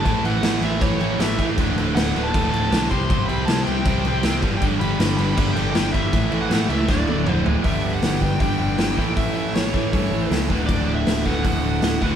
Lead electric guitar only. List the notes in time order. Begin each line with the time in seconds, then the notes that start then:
Already playing: A5
0.25 F#5
0.63 E5
0.82 C#5
1.20 E5
1.95 F#5
2.23 A5
2.51 A5
2.90 C6
3.26 B5
3.45 A5
3.63 G5
4.57 G5
4.79 B5
5.17 B5
5.52 G5
5.73 G5
5.92 E5
6.41 F#5
6.69 E5
6.91 D5
7.32 C5
7.65 E5
7.93 F#5
8.22 G5
8.41 G5
9.17 E5
9.34 E5
9.54 C#5
10.66 D5
10.94 E5
11.25 F#5
11.44 F#5